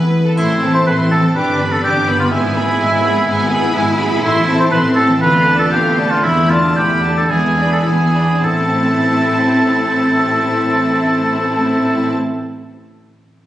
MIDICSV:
0, 0, Header, 1, 9, 480
1, 0, Start_track
1, 0, Key_signature, 0, "minor"
1, 0, Tempo, 483481
1, 371, Time_signature, 4, 2, 24, 8
1, 4683, Tempo, 509338
1, 6603, Tempo, 550964
1, 7563, Tempo, 575264
1, 12243, End_track
2, 0, Start_track
2, 0, Title_t, "Violin section"
2, 0, Program_c, 0, 48
2, 378, Note_on_c, 0, 84, 39
2, 602, Note_off_c, 0, 84, 0
2, 622, Note_on_c, 0, 81, 41
2, 863, Note_off_c, 0, 81, 0
2, 870, Note_on_c, 0, 84, 39
2, 1107, Note_off_c, 0, 84, 0
2, 1107, Note_on_c, 0, 81, 41
2, 1345, Note_off_c, 0, 81, 0
2, 1347, Note_on_c, 0, 86, 45
2, 1569, Note_off_c, 0, 86, 0
2, 1592, Note_on_c, 0, 83, 43
2, 1827, Note_off_c, 0, 83, 0
2, 1830, Note_on_c, 0, 86, 45
2, 2065, Note_off_c, 0, 86, 0
2, 2067, Note_on_c, 0, 83, 44
2, 2301, Note_on_c, 0, 80, 46
2, 2302, Note_off_c, 0, 83, 0
2, 2521, Note_off_c, 0, 80, 0
2, 2538, Note_on_c, 0, 83, 46
2, 2773, Note_off_c, 0, 83, 0
2, 2776, Note_on_c, 0, 80, 50
2, 3010, Note_off_c, 0, 80, 0
2, 3013, Note_on_c, 0, 83, 45
2, 3248, Note_off_c, 0, 83, 0
2, 3248, Note_on_c, 0, 80, 52
2, 3468, Note_off_c, 0, 80, 0
2, 3492, Note_on_c, 0, 83, 49
2, 3725, Note_off_c, 0, 83, 0
2, 3728, Note_on_c, 0, 80, 54
2, 3961, Note_on_c, 0, 83, 48
2, 3962, Note_off_c, 0, 80, 0
2, 4199, Note_off_c, 0, 83, 0
2, 4201, Note_on_c, 0, 84, 52
2, 4423, Note_off_c, 0, 84, 0
2, 4443, Note_on_c, 0, 81, 52
2, 4683, Note_off_c, 0, 81, 0
2, 4683, Note_on_c, 0, 84, 54
2, 4914, Note_off_c, 0, 84, 0
2, 4924, Note_on_c, 0, 81, 47
2, 5154, Note_off_c, 0, 81, 0
2, 5156, Note_on_c, 0, 77, 54
2, 5372, Note_off_c, 0, 77, 0
2, 5389, Note_on_c, 0, 81, 51
2, 5621, Note_on_c, 0, 77, 53
2, 5624, Note_off_c, 0, 81, 0
2, 5858, Note_on_c, 0, 81, 45
2, 5861, Note_off_c, 0, 77, 0
2, 6099, Note_on_c, 0, 83, 49
2, 6104, Note_off_c, 0, 81, 0
2, 6332, Note_off_c, 0, 83, 0
2, 6346, Note_on_c, 0, 81, 43
2, 6599, Note_off_c, 0, 81, 0
2, 6606, Note_on_c, 0, 83, 45
2, 6835, Note_on_c, 0, 81, 39
2, 6837, Note_off_c, 0, 83, 0
2, 7072, Note_off_c, 0, 81, 0
2, 7078, Note_on_c, 0, 80, 44
2, 7301, Note_off_c, 0, 80, 0
2, 7317, Note_on_c, 0, 83, 38
2, 7563, Note_off_c, 0, 83, 0
2, 7564, Note_on_c, 0, 80, 40
2, 7801, Note_on_c, 0, 83, 34
2, 7804, Note_off_c, 0, 80, 0
2, 8042, Note_off_c, 0, 83, 0
2, 8046, Note_on_c, 0, 81, 46
2, 11113, Note_off_c, 0, 81, 0
2, 12243, End_track
3, 0, Start_track
3, 0, Title_t, "Oboe"
3, 0, Program_c, 1, 68
3, 372, Note_on_c, 1, 64, 56
3, 713, Note_off_c, 1, 64, 0
3, 739, Note_on_c, 1, 72, 59
3, 794, Note_off_c, 1, 72, 0
3, 859, Note_on_c, 1, 71, 68
3, 968, Note_off_c, 1, 71, 0
3, 1105, Note_on_c, 1, 69, 63
3, 1213, Note_off_c, 1, 69, 0
3, 1340, Note_on_c, 1, 71, 65
3, 1709, Note_on_c, 1, 69, 63
3, 1724, Note_off_c, 1, 71, 0
3, 1818, Note_off_c, 1, 69, 0
3, 1824, Note_on_c, 1, 67, 64
3, 2174, Note_off_c, 1, 67, 0
3, 2181, Note_on_c, 1, 65, 59
3, 2235, Note_off_c, 1, 65, 0
3, 2294, Note_on_c, 1, 64, 70
3, 3923, Note_off_c, 1, 64, 0
3, 4195, Note_on_c, 1, 64, 75
3, 4533, Note_off_c, 1, 64, 0
3, 4557, Note_on_c, 1, 72, 75
3, 4612, Note_off_c, 1, 72, 0
3, 4678, Note_on_c, 1, 71, 84
3, 4783, Note_off_c, 1, 71, 0
3, 4907, Note_on_c, 1, 69, 76
3, 5014, Note_off_c, 1, 69, 0
3, 5153, Note_on_c, 1, 71, 87
3, 5498, Note_off_c, 1, 71, 0
3, 5509, Note_on_c, 1, 69, 70
3, 5561, Note_off_c, 1, 69, 0
3, 5622, Note_on_c, 1, 67, 70
3, 5995, Note_on_c, 1, 65, 67
3, 6009, Note_off_c, 1, 67, 0
3, 6111, Note_on_c, 1, 64, 69
3, 6125, Note_off_c, 1, 65, 0
3, 6356, Note_on_c, 1, 65, 66
3, 6370, Note_off_c, 1, 64, 0
3, 6604, Note_off_c, 1, 65, 0
3, 6608, Note_on_c, 1, 67, 73
3, 6949, Note_off_c, 1, 67, 0
3, 6969, Note_on_c, 1, 69, 57
3, 7080, Note_on_c, 1, 68, 62
3, 7093, Note_off_c, 1, 69, 0
3, 7441, Note_off_c, 1, 68, 0
3, 7450, Note_on_c, 1, 69, 53
3, 7503, Note_off_c, 1, 69, 0
3, 7566, Note_on_c, 1, 68, 50
3, 8035, Note_off_c, 1, 68, 0
3, 8049, Note_on_c, 1, 69, 55
3, 11116, Note_off_c, 1, 69, 0
3, 12243, End_track
4, 0, Start_track
4, 0, Title_t, "Violin section"
4, 0, Program_c, 2, 48
4, 0, Note_on_c, 2, 71, 50
4, 241, Note_off_c, 2, 71, 0
4, 259, Note_on_c, 2, 69, 44
4, 376, Note_off_c, 2, 69, 0
4, 379, Note_on_c, 2, 64, 40
4, 603, Note_off_c, 2, 64, 0
4, 622, Note_on_c, 2, 69, 36
4, 863, Note_off_c, 2, 69, 0
4, 867, Note_on_c, 2, 64, 38
4, 1105, Note_off_c, 2, 64, 0
4, 1107, Note_on_c, 2, 69, 42
4, 1343, Note_on_c, 2, 67, 38
4, 1345, Note_off_c, 2, 69, 0
4, 1566, Note_off_c, 2, 67, 0
4, 1587, Note_on_c, 2, 71, 41
4, 1825, Note_off_c, 2, 71, 0
4, 1830, Note_on_c, 2, 67, 42
4, 2062, Note_on_c, 2, 71, 43
4, 2065, Note_off_c, 2, 67, 0
4, 2300, Note_off_c, 2, 71, 0
4, 2301, Note_on_c, 2, 64, 49
4, 2521, Note_off_c, 2, 64, 0
4, 2537, Note_on_c, 2, 68, 43
4, 2773, Note_off_c, 2, 68, 0
4, 2773, Note_on_c, 2, 64, 47
4, 3009, Note_off_c, 2, 64, 0
4, 3009, Note_on_c, 2, 68, 47
4, 3246, Note_off_c, 2, 68, 0
4, 3248, Note_on_c, 2, 64, 49
4, 3467, Note_off_c, 2, 64, 0
4, 3484, Note_on_c, 2, 68, 49
4, 3721, Note_off_c, 2, 68, 0
4, 3725, Note_on_c, 2, 64, 50
4, 3961, Note_off_c, 2, 64, 0
4, 3963, Note_on_c, 2, 68, 50
4, 4200, Note_off_c, 2, 68, 0
4, 4201, Note_on_c, 2, 64, 54
4, 4423, Note_off_c, 2, 64, 0
4, 4443, Note_on_c, 2, 69, 47
4, 4683, Note_off_c, 2, 69, 0
4, 4688, Note_on_c, 2, 64, 50
4, 4916, Note_on_c, 2, 69, 51
4, 4917, Note_off_c, 2, 64, 0
4, 5150, Note_off_c, 2, 69, 0
4, 5155, Note_on_c, 2, 65, 48
4, 5372, Note_off_c, 2, 65, 0
4, 5388, Note_on_c, 2, 69, 45
4, 5624, Note_off_c, 2, 69, 0
4, 5627, Note_on_c, 2, 65, 47
4, 5864, Note_off_c, 2, 65, 0
4, 5864, Note_on_c, 2, 69, 47
4, 6106, Note_off_c, 2, 69, 0
4, 6110, Note_on_c, 2, 64, 46
4, 6337, Note_off_c, 2, 64, 0
4, 6357, Note_on_c, 2, 62, 40
4, 6604, Note_off_c, 2, 62, 0
4, 6605, Note_on_c, 2, 64, 39
4, 6836, Note_off_c, 2, 64, 0
4, 6842, Note_on_c, 2, 62, 40
4, 7072, Note_on_c, 2, 64, 40
4, 7076, Note_off_c, 2, 62, 0
4, 7298, Note_off_c, 2, 64, 0
4, 7315, Note_on_c, 2, 68, 38
4, 7562, Note_off_c, 2, 68, 0
4, 7566, Note_on_c, 2, 64, 33
4, 7804, Note_on_c, 2, 68, 31
4, 7805, Note_off_c, 2, 64, 0
4, 8039, Note_on_c, 2, 64, 43
4, 8043, Note_off_c, 2, 68, 0
4, 11105, Note_off_c, 2, 64, 0
4, 12243, End_track
5, 0, Start_track
5, 0, Title_t, "Cello section"
5, 0, Program_c, 3, 48
5, 0, Note_on_c, 3, 57, 41
5, 128, Note_off_c, 3, 57, 0
5, 369, Note_on_c, 3, 60, 49
5, 1301, Note_off_c, 3, 60, 0
5, 1346, Note_on_c, 3, 62, 54
5, 1815, Note_off_c, 3, 62, 0
5, 1822, Note_on_c, 3, 59, 54
5, 2769, Note_on_c, 3, 56, 58
5, 2772, Note_off_c, 3, 59, 0
5, 3234, Note_off_c, 3, 56, 0
5, 3246, Note_on_c, 3, 59, 57
5, 3712, Note_off_c, 3, 59, 0
5, 3715, Note_on_c, 3, 64, 66
5, 4659, Note_off_c, 3, 64, 0
5, 4682, Note_on_c, 3, 60, 66
5, 5140, Note_off_c, 3, 60, 0
5, 5150, Note_on_c, 3, 59, 67
5, 6087, Note_off_c, 3, 59, 0
5, 6104, Note_on_c, 3, 57, 55
5, 7053, Note_off_c, 3, 57, 0
5, 7072, Note_on_c, 3, 56, 46
5, 7552, Note_off_c, 3, 56, 0
5, 7564, Note_on_c, 3, 59, 39
5, 7804, Note_off_c, 3, 59, 0
5, 8046, Note_on_c, 3, 45, 45
5, 11112, Note_off_c, 3, 45, 0
5, 12243, End_track
6, 0, Start_track
6, 0, Title_t, "Harp"
6, 0, Program_c, 4, 46
6, 0, Note_on_c, 4, 52, 44
6, 0, Note_on_c, 4, 59, 34
6, 0, Note_on_c, 4, 68, 33
6, 40, Note_on_c, 4, 64, 32
6, 192, Note_off_c, 4, 59, 0
6, 204, Note_on_c, 4, 59, 35
6, 364, Note_on_c, 4, 45, 43
6, 388, Note_off_c, 4, 68, 0
6, 389, Note_off_c, 4, 59, 0
6, 391, Note_off_c, 4, 52, 0
6, 530, Note_on_c, 4, 52, 36
6, 683, Note_off_c, 4, 64, 0
6, 694, Note_on_c, 4, 64, 37
6, 844, Note_off_c, 4, 52, 0
6, 855, Note_on_c, 4, 52, 35
6, 1020, Note_on_c, 4, 60, 35
6, 1165, Note_off_c, 4, 52, 0
6, 1177, Note_on_c, 4, 52, 37
6, 1341, Note_on_c, 4, 43, 47
6, 1357, Note_off_c, 4, 45, 0
6, 1359, Note_off_c, 4, 52, 0
6, 1360, Note_off_c, 4, 64, 0
6, 1361, Note_off_c, 4, 60, 0
6, 1500, Note_on_c, 4, 50, 37
6, 1661, Note_on_c, 4, 67, 39
6, 1812, Note_off_c, 4, 50, 0
6, 1824, Note_on_c, 4, 50, 39
6, 1984, Note_on_c, 4, 59, 40
6, 2133, Note_off_c, 4, 50, 0
6, 2145, Note_on_c, 4, 50, 42
6, 2303, Note_on_c, 4, 44, 53
6, 2317, Note_off_c, 4, 67, 0
6, 2318, Note_off_c, 4, 43, 0
6, 2320, Note_off_c, 4, 50, 0
6, 2463, Note_on_c, 4, 56, 39
6, 2616, Note_on_c, 4, 64, 43
6, 2767, Note_off_c, 4, 56, 0
6, 2779, Note_on_c, 4, 56, 39
6, 2922, Note_off_c, 4, 59, 0
6, 2934, Note_on_c, 4, 59, 43
6, 3079, Note_off_c, 4, 56, 0
6, 3091, Note_on_c, 4, 56, 43
6, 3236, Note_off_c, 4, 44, 0
6, 3248, Note_on_c, 4, 44, 48
6, 3390, Note_off_c, 4, 59, 0
6, 3402, Note_on_c, 4, 59, 44
6, 3550, Note_off_c, 4, 64, 0
6, 3562, Note_on_c, 4, 64, 44
6, 3712, Note_off_c, 4, 56, 0
6, 3724, Note_on_c, 4, 56, 46
6, 3868, Note_off_c, 4, 59, 0
6, 3880, Note_on_c, 4, 59, 44
6, 4025, Note_off_c, 4, 56, 0
6, 4037, Note_on_c, 4, 56, 46
6, 4196, Note_on_c, 4, 45, 57
6, 4216, Note_off_c, 4, 56, 0
6, 4218, Note_off_c, 4, 59, 0
6, 4219, Note_off_c, 4, 44, 0
6, 4359, Note_on_c, 4, 52, 43
6, 4509, Note_off_c, 4, 64, 0
6, 4521, Note_on_c, 4, 64, 49
6, 4669, Note_off_c, 4, 52, 0
6, 4681, Note_on_c, 4, 52, 42
6, 4839, Note_on_c, 4, 60, 48
6, 4984, Note_off_c, 4, 52, 0
6, 4995, Note_on_c, 4, 52, 42
6, 5150, Note_on_c, 4, 50, 60
6, 5167, Note_off_c, 4, 45, 0
6, 5169, Note_off_c, 4, 52, 0
6, 5169, Note_off_c, 4, 60, 0
6, 5169, Note_off_c, 4, 64, 0
6, 5306, Note_on_c, 4, 57, 45
6, 5465, Note_on_c, 4, 65, 46
6, 5609, Note_off_c, 4, 57, 0
6, 5620, Note_on_c, 4, 57, 43
6, 5780, Note_on_c, 4, 62, 40
6, 5932, Note_off_c, 4, 57, 0
6, 5943, Note_on_c, 4, 57, 43
6, 6107, Note_on_c, 4, 52, 51
6, 6125, Note_off_c, 4, 50, 0
6, 6125, Note_off_c, 4, 65, 0
6, 6271, Note_on_c, 4, 59, 38
6, 6438, Note_on_c, 4, 64, 42
6, 6590, Note_off_c, 4, 59, 0
6, 6601, Note_on_c, 4, 59, 38
6, 6745, Note_off_c, 4, 62, 0
6, 6756, Note_on_c, 4, 62, 38
6, 6906, Note_off_c, 4, 59, 0
6, 6917, Note_on_c, 4, 59, 36
6, 7063, Note_off_c, 4, 52, 0
6, 7073, Note_on_c, 4, 52, 46
6, 7092, Note_off_c, 4, 57, 0
6, 7220, Note_off_c, 4, 59, 0
6, 7230, Note_on_c, 4, 59, 33
6, 7383, Note_off_c, 4, 64, 0
6, 7393, Note_on_c, 4, 64, 34
6, 7550, Note_off_c, 4, 59, 0
6, 7561, Note_on_c, 4, 59, 34
6, 7709, Note_off_c, 4, 62, 0
6, 7719, Note_on_c, 4, 62, 29
6, 7873, Note_off_c, 4, 59, 0
6, 7883, Note_on_c, 4, 59, 28
6, 8042, Note_on_c, 4, 45, 35
6, 8060, Note_off_c, 4, 62, 0
6, 8061, Note_off_c, 4, 59, 0
6, 8062, Note_off_c, 4, 52, 0
6, 8099, Note_on_c, 4, 57, 35
6, 8159, Note_on_c, 4, 60, 37
6, 8206, Note_off_c, 4, 64, 0
6, 8216, Note_on_c, 4, 64, 37
6, 8275, Note_on_c, 4, 69, 35
6, 8333, Note_on_c, 4, 76, 36
6, 11165, Note_off_c, 4, 57, 0
6, 11226, Note_off_c, 4, 60, 0
6, 11282, Note_off_c, 4, 64, 0
6, 11296, Note_off_c, 4, 45, 0
6, 11342, Note_off_c, 4, 69, 0
6, 11400, Note_off_c, 4, 76, 0
6, 12243, End_track
7, 0, Start_track
7, 0, Title_t, "Viola section"
7, 0, Program_c, 5, 48
7, 372, Note_on_c, 5, 57, 42
7, 599, Note_off_c, 5, 57, 0
7, 617, Note_on_c, 5, 60, 38
7, 860, Note_off_c, 5, 60, 0
7, 860, Note_on_c, 5, 57, 38
7, 1099, Note_on_c, 5, 60, 38
7, 1102, Note_off_c, 5, 57, 0
7, 1341, Note_off_c, 5, 60, 0
7, 1345, Note_on_c, 5, 62, 42
7, 1567, Note_off_c, 5, 62, 0
7, 1582, Note_on_c, 5, 59, 41
7, 1820, Note_on_c, 5, 62, 46
7, 1822, Note_off_c, 5, 59, 0
7, 2060, Note_off_c, 5, 62, 0
7, 2061, Note_on_c, 5, 59, 42
7, 2296, Note_on_c, 5, 56, 48
7, 2299, Note_off_c, 5, 59, 0
7, 2518, Note_off_c, 5, 56, 0
7, 2532, Note_on_c, 5, 59, 43
7, 2767, Note_on_c, 5, 56, 45
7, 2770, Note_off_c, 5, 59, 0
7, 3005, Note_on_c, 5, 59, 44
7, 3006, Note_off_c, 5, 56, 0
7, 3243, Note_off_c, 5, 59, 0
7, 3245, Note_on_c, 5, 56, 48
7, 3466, Note_off_c, 5, 56, 0
7, 3486, Note_on_c, 5, 59, 48
7, 3723, Note_off_c, 5, 59, 0
7, 3729, Note_on_c, 5, 56, 54
7, 3963, Note_off_c, 5, 56, 0
7, 3972, Note_on_c, 5, 59, 49
7, 4204, Note_off_c, 5, 59, 0
7, 4208, Note_on_c, 5, 57, 56
7, 4427, Note_off_c, 5, 57, 0
7, 4444, Note_on_c, 5, 60, 50
7, 4684, Note_off_c, 5, 60, 0
7, 4685, Note_on_c, 5, 57, 51
7, 4915, Note_off_c, 5, 57, 0
7, 4919, Note_on_c, 5, 60, 49
7, 5151, Note_off_c, 5, 60, 0
7, 5153, Note_on_c, 5, 57, 50
7, 5371, Note_off_c, 5, 57, 0
7, 5387, Note_on_c, 5, 62, 48
7, 5623, Note_off_c, 5, 62, 0
7, 5630, Note_on_c, 5, 57, 50
7, 5863, Note_on_c, 5, 62, 45
7, 5866, Note_off_c, 5, 57, 0
7, 6106, Note_off_c, 5, 62, 0
7, 6110, Note_on_c, 5, 59, 50
7, 6338, Note_off_c, 5, 59, 0
7, 6359, Note_on_c, 5, 62, 43
7, 6605, Note_off_c, 5, 62, 0
7, 6606, Note_on_c, 5, 59, 39
7, 6837, Note_off_c, 5, 59, 0
7, 6838, Note_on_c, 5, 62, 39
7, 7074, Note_off_c, 5, 62, 0
7, 7077, Note_on_c, 5, 59, 41
7, 7300, Note_off_c, 5, 59, 0
7, 7314, Note_on_c, 5, 62, 38
7, 7557, Note_on_c, 5, 59, 36
7, 7561, Note_off_c, 5, 62, 0
7, 7799, Note_on_c, 5, 62, 32
7, 7801, Note_off_c, 5, 59, 0
7, 8040, Note_on_c, 5, 60, 47
7, 8041, Note_off_c, 5, 62, 0
7, 11106, Note_off_c, 5, 60, 0
7, 12243, End_track
8, 0, Start_track
8, 0, Title_t, "Double bass section"
8, 0, Program_c, 6, 48
8, 374, Note_on_c, 6, 33, 47
8, 803, Note_off_c, 6, 33, 0
8, 866, Note_on_c, 6, 33, 47
8, 1288, Note_off_c, 6, 33, 0
8, 1345, Note_on_c, 6, 31, 53
8, 1767, Note_off_c, 6, 31, 0
8, 1823, Note_on_c, 6, 31, 53
8, 2243, Note_off_c, 6, 31, 0
8, 2294, Note_on_c, 6, 32, 55
8, 2714, Note_off_c, 6, 32, 0
8, 2774, Note_on_c, 6, 32, 59
8, 3190, Note_off_c, 6, 32, 0
8, 3240, Note_on_c, 6, 32, 63
8, 3662, Note_off_c, 6, 32, 0
8, 3718, Note_on_c, 6, 32, 60
8, 4140, Note_off_c, 6, 32, 0
8, 4199, Note_on_c, 6, 33, 64
8, 4624, Note_off_c, 6, 33, 0
8, 4685, Note_on_c, 6, 33, 59
8, 5095, Note_off_c, 6, 33, 0
8, 5146, Note_on_c, 6, 38, 63
8, 5565, Note_off_c, 6, 38, 0
8, 5618, Note_on_c, 6, 38, 61
8, 6046, Note_off_c, 6, 38, 0
8, 6107, Note_on_c, 6, 40, 57
8, 6544, Note_off_c, 6, 40, 0
8, 6601, Note_on_c, 6, 40, 52
8, 7015, Note_off_c, 6, 40, 0
8, 7068, Note_on_c, 6, 40, 51
8, 7501, Note_off_c, 6, 40, 0
8, 7562, Note_on_c, 6, 40, 44
8, 7987, Note_off_c, 6, 40, 0
8, 8040, Note_on_c, 6, 33, 47
8, 11107, Note_off_c, 6, 33, 0
8, 12243, End_track
9, 0, Start_track
9, 0, Title_t, "Drums"
9, 373, Note_on_c, 9, 81, 34
9, 472, Note_off_c, 9, 81, 0
9, 12243, End_track
0, 0, End_of_file